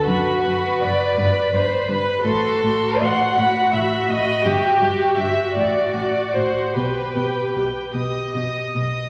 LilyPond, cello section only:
\new Staff \with { instrumentName = "Cello section" } { \clef bass \time 6/8 \key b \phrygian \tempo 4. = 53 fis,8 fis,8 fis,8 g,8 g,8 g,8 | a,8 a,8 a,8 a,8 a,8 a,8 | g,8 g,8 g,8 a,8 a,8 a,8 | b,8 b,8 b,8 b,8 b,8 b,8 | }